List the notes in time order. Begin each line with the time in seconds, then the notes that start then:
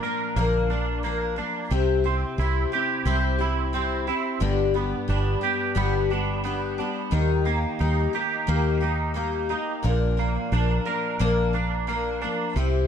Already playing: A#2 A#3 D4
0.03 F3 A#3 D4 A#4
0.36 A#1 A#2 D3 F3 A#3 D4 A#4
0.70 F3 A#3 D4 A#4
1.03 F3 A#3 D4 A#4
1.36 F3 A#3 D4 A#4
1.71 C2 C3 G3 C4 E4 G4
2.04 C4 E4 G4
2.38 C2 G3 C4 E4 G4
2.72 C4 E4 G4
3.05 C2 C3 G3 C4 E4 G4
3.38 C4 E4 G4
3.73 G3 C4 E4 G4
4.07 C4 E4 G4
4.40 G1 G2 D3 G3 B3 D4 G4
4.74 G3 B3 D4 G4
5.08 G1 G3 B3 D4 G4
5.41 G3 B3 D4 G4
5.75 G1 G2 D3 G3 B3 D4 G4
6.10 G3 B3 D4 G4
6.44 G3 B3 D4 G4
6.78 G3 B3 D4 G4
7.11 D#2 D#3 G3 A#3 D#4 G4
7.45 A#3 D#4 G4
7.79 D#2 G3 A#3 D#4 G4
8.13 A#3 D#4 G4
8.47 D#2 D#3 G3 A#3 D#4 G4
8.81 A#3 D#4 G4
9.14 G3 A#3 D#4 G4
9.49 A#3 D#4 G4
9.83 A#1 A#2 D3 F3 A#3 D4 A#4
10.17 F3 A#3 D4 A#4
10.52 A#1 F3 A#3 D4 A#4
10.85 F3 A#3 D4 A#4
11.19 A#1 A#2 D3 F3 A#3 D4 A#4
11.53 F3 A#3 D4 A#4
11.87 F3 A#3 D4 A#4
12.21 F3 A#3 D4 A#4
12.56 C2 C3 G3 C4 E4 G4